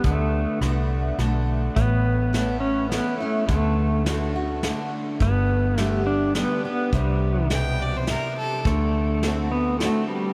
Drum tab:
HH |x-x-x-|x-x-x-|x-x-x-|x-x-x-|
SD |--r-r-|--o-o-|--o-o-|--o-o-|
BD |o-----|o-----|o-----|o-----|

HH |x-x-x-|x-x-x-|
SD |--o-o-|--o-o-|
BD |o-----|o-----|